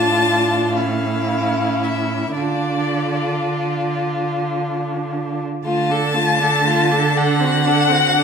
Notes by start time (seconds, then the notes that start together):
Already playing: A2 D4 F4 A5
0.76 C#4 E4 F5
1.83 E5
2.36 D3 D4 F4 D5
5.64 D3 A3 F4 A5
5.90 D4 A4
6.14 A3 F4
6.40 D4 A4
6.65 A3 F4
6.90 D4 A4
7.15 D4 A4 F#5
7.40 C4 F#4
7.66 D4 A4
7.90 C4 F#4
8.15 D4 A4